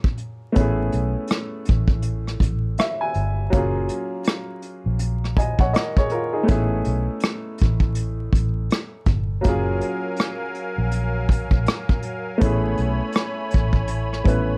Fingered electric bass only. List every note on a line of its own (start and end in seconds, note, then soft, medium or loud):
0.57 0.91 A1 loud
0.94 1.14 B1 medium
1.69 2.38 A1 medium
2.40 2.76 A1 medium
3.15 3.50 G1 medium
3.53 3.88 F#1 loud
4.86 5.56 A#1 medium
5.59 5.73 A#1 medium
6.49 6.84 A1 medium
6.87 7.07 B1 medium
7.62 8.31 A1 medium
8.33 8.68 A1 medium
9.07 9.42 G1 medium
9.45 9.80 F#1 loud
10.78 11.48 A#1 medium
11.51 11.66 A#1 medium
12.42 12.77 A1 loud
12.79 12.99 B1 medium
13.54 14.24 A1 medium
14.26 14.58 A1 medium